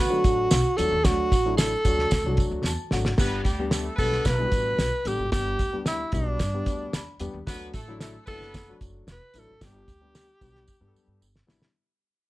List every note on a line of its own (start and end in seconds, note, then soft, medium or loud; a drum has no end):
0.00 0.19 D3 loud
0.00 0.22 B3 loud
0.00 0.78 F#4 loud
0.00 0.22 B4 loud
0.10 0.52 F#3 medium
0.10 0.52 A3 medium
0.10 0.52 D4 medium
0.10 0.52 F#4 medium
0.24 0.46 A1 medium
0.24 kick loud
0.24 closed hi-hat medium
0.24 tambourine medium
0.51 0.62 B1 medium
0.51 snare loud
0.51 closed hi-hat medium
0.51 tambourine loud
0.77 0.89 E2 loud
0.77 0.95 F#3 medium
0.77 0.95 A3 medium
0.77 0.95 D4 medium
0.77 0.95 F#4 medium
0.77 1.06 A4 loud
0.77 closed hi-hat medium
0.77 tambourine medium
0.92 1.02 D#2 medium
1.04 1.26 D2 loud
1.04 1.30 F#3 medium
1.04 1.29 A3 medium
1.04 1.29 D4 medium
1.04 1.57 F#4 loud
1.04 1.30 F#4 medium
1.04 kick loud
1.04 snare loud
1.04 closed hi-hat loud
1.04 tambourine loud
1.32 1.74 A1 medium
1.32 kick loud
1.32 closed hi-hat medium
1.32 tambourine medium
1.46 1.70 F#3 medium
1.46 1.71 A3 medium
1.46 1.70 D4 medium
1.46 1.70 E4 medium
1.57 2.61 A4 loud
1.57 snare loud
1.57 closed hi-hat loud
1.57 tambourine loud
1.85 2.06 D2 loud
1.85 2.10 F#3 medium
1.85 2.10 A3 medium
1.85 2.10 D4 medium
1.85 2.10 F#4 medium
1.85 kick medium
1.85 closed hi-hat medium
1.85 tambourine medium
1.99 snare soft
2.11 2.22 D2 medium
2.11 kick medium
2.11 snare loud
2.11 closed hi-hat loud
2.11 tambourine loud
2.24 2.35 C2 medium
2.24 2.67 F#3 medium
2.24 2.67 A3 medium
2.24 2.67 D4 medium
2.24 2.67 F#4 loud
2.37 kick loud
2.37 closed hi-hat medium
2.37 tambourine medium
2.51 2.62 D2 medium
2.64 2.75 E2 medium
2.64 2.91 A5 medium
2.64 snare medium
2.64 tambourine loud
2.91 3.13 G#1 medium
2.91 3.09 F#3 medium
2.91 3.09 A3 medium
2.91 3.09 D4 medium
2.91 3.09 F#4 medium
2.91 3.17 F#5 medium
2.91 snare medium
2.91 tambourine medium
3.05 snare medium
3.18 3.40 G1 loud
3.18 3.44 G3 medium
3.18 3.44 B3 medium
3.18 3.41 B3 loud
3.18 3.44 D4 medium
3.18 3.44 G4 loud
3.18 3.41 B4 loud
3.18 kick loud
3.18 snare loud
3.18 crash medium
3.18 tambourine medium
3.43 3.88 D2 medium
3.43 3.66 G3 medium
3.43 3.66 G4 loud
3.43 kick medium
3.43 closed hi-hat medium
3.43 tambourine medium
3.59 3.84 G3 medium
3.59 3.84 B3 medium
3.59 3.84 D4 medium
3.59 3.84 G4 loud
3.71 3.94 A3 medium
3.71 3.94 A4 medium
3.71 snare loud
3.71 closed hi-hat medium
3.71 tambourine loud
3.96 4.20 B1 medium
3.96 4.24 G3 medium
3.96 4.49 B3 loud
3.96 4.24 B3 medium
3.96 4.24 D4 medium
3.96 4.28 A4 loud
3.96 4.25 A4 medium
3.96 4.48 B4 loud
3.96 kick medium
3.96 closed hi-hat medium
3.96 tambourine medium
4.12 snare soft
4.25 4.47 B1 loud
4.25 5.09 B4 loud
4.25 kick medium
4.25 snare loud
4.25 closed hi-hat medium
4.25 tambourine loud
4.38 4.80 G3 medium
4.38 4.80 B3 medium
4.38 4.81 D4 medium
4.38 4.45 E4 medium
4.45 4.84 F#4 medium
4.52 4.73 A1 medium
4.52 kick loud
4.52 closed hi-hat medium
4.52 tambourine medium
4.78 4.89 B1 medium
4.78 snare loud
4.78 closed hi-hat medium
4.78 tambourine loud
5.05 5.16 A1 medium
5.05 5.23 G3 medium
5.05 5.23 B3 medium
5.05 5.23 D4 medium
5.05 5.32 G4 loud
5.05 5.23 A4 medium
5.05 closed hi-hat medium
5.05 tambourine medium
5.18 5.29 G#1 medium
5.32 5.54 G1 loud
5.32 5.58 G3 medium
5.32 5.58 B3 medium
5.32 5.58 D4 medium
5.32 5.82 G4 loud
5.32 5.58 G4 medium
5.32 kick loud
5.32 snare loud
5.32 closed hi-hat medium
5.32 tambourine loud
5.59 6.02 D2 medium
5.59 kick loud
5.59 closed hi-hat medium
5.59 tambourine medium
5.73 5.98 G3 medium
5.73 5.98 B3 medium
5.73 5.98 D4 medium
5.73 5.98 G4 medium
5.86 6.12 E4 loud
5.86 snare loud
5.86 closed hi-hat medium
5.86 tambourine loud
6.12 6.34 B1 loud
6.12 6.38 G3 medium
6.12 6.38 B3 medium
6.12 6.38 D4 medium
6.12 7.16 D4 medium
6.12 6.38 F#4 medium
6.12 kick medium
6.12 closed hi-hat medium
6.12 tambourine medium
6.39 6.61 G2 loud
6.39 kick medium
6.39 snare loud
6.39 closed hi-hat loud
6.39 tambourine loud
6.54 6.95 G3 medium
6.54 6.95 B3 medium
6.54 6.95 D4 medium
6.54 6.95 G4 medium
6.66 6.88 D2 medium
6.66 kick loud
6.66 closed hi-hat medium
6.66 tambourine medium
6.93 7.04 E2 medium
6.93 7.43 B5 medium
6.93 snare loud
6.93 closed hi-hat medium
6.93 tambourine loud
7.20 7.31 E2 medium
7.20 7.37 G3 medium
7.20 7.37 B3 medium
7.20 7.37 D4 medium
7.20 7.37 G4 loud
7.20 closed hi-hat medium
7.20 tambourine medium
7.34 7.44 D#2 medium
7.47 7.68 D2 loud
7.47 7.72 F#3 medium
7.47 7.72 A3 medium
7.47 7.68 B3 loud
7.47 7.72 D4 medium
7.47 7.72 F#4 loud
7.47 7.68 B4 loud
7.47 kick loud
7.47 snare loud
7.47 closed hi-hat loud
7.47 tambourine loud
7.74 8.16 A1 medium
7.74 7.95 A3 loud
7.74 7.95 A4 loud
7.74 kick medium
7.74 closed hi-hat medium
7.74 tambourine medium
7.88 8.12 F#3 medium
7.88 8.13 A3 medium
7.88 8.13 D4 medium
7.88 8.13 E4 loud
8.00 8.22 A3 medium
8.00 8.22 A4 medium
8.00 snare loud
8.00 closed hi-hat loud
8.00 tambourine loud
8.26 8.70 F#1 loud
8.26 8.53 F#3 medium
8.26 8.53 A3 medium
8.26 8.77 B3 loud
8.26 8.53 D4 medium
8.26 8.53 E4 medium
8.26 8.77 A4 loud
8.26 8.77 B4 loud
8.26 kick medium
8.26 closed hi-hat medium
8.26 tambourine medium
8.41 snare soft
8.54 kick medium
8.54 snare loud
8.54 closed hi-hat loud
8.54 tambourine loud
8.69 9.10 F#3 medium
8.69 9.09 A3 medium
8.69 9.10 D4 medium
8.69 9.09 F#4 medium
8.81 9.02 F#1 medium
8.81 kick loud
8.81 closed hi-hat medium
8.81 tambourine medium
9.07 9.18 E1 loud
9.07 snare loud
9.07 closed hi-hat medium
9.07 tambourine loud
9.12 9.41 B4 loud
9.34 9.45 A1 medium
9.34 9.51 F#3 medium
9.34 9.51 A3 medium
9.34 9.51 D4 medium
9.34 9.51 E4 medium
9.34 closed hi-hat medium
9.34 tambourine medium
9.39 9.66 A4 loud
9.48 9.58 G#1 medium
9.61 9.82 G1 loud
9.61 9.86 G3 medium
9.61 9.87 B3 medium
9.61 9.86 D4 medium
9.61 9.87 G4 medium
9.61 11.50 G4 loud
9.61 kick loud
9.61 snare loud
9.61 closed hi-hat loud
9.61 tambourine loud
9.88 10.30 D2 loud
9.88 kick medium
9.88 closed hi-hat medium
9.88 tambourine medium
10.01 10.26 G3 medium
10.01 10.26 B3 medium
10.01 10.26 D4 medium
10.01 10.26 G4 medium
10.15 snare loud
10.15 closed hi-hat medium
10.15 tambourine loud
10.41 10.63 B1 loud
10.41 10.66 G3 medium
10.41 10.66 B3 medium
10.41 10.66 D4 medium
10.41 10.66 G4 loud
10.41 kick medium
10.41 closed hi-hat medium
10.41 tambourine medium
10.55 snare soft
10.68 kick medium
10.68 tambourine loud
10.81 10.92 G2 medium
10.81 11.22 G3 loud
10.81 11.22 B3 medium
10.81 11.23 D4 medium
10.81 10.88 G4 medium
10.87 11.26 A4 loud
10.94 11.05 F#2 medium
10.94 tambourine medium
11.08 11.18 G2 medium
11.22 11.43 G1 loud
11.22 tambourine loud
11.36 snare medium
11.47 11.58 G#1 medium
11.47 11.64 G3 medium
11.47 11.64 B3 medium
11.47 11.64 D4 medium
11.47 11.64 E4 loud
11.47 snare loud
11.47 tambourine medium
11.62 snare loud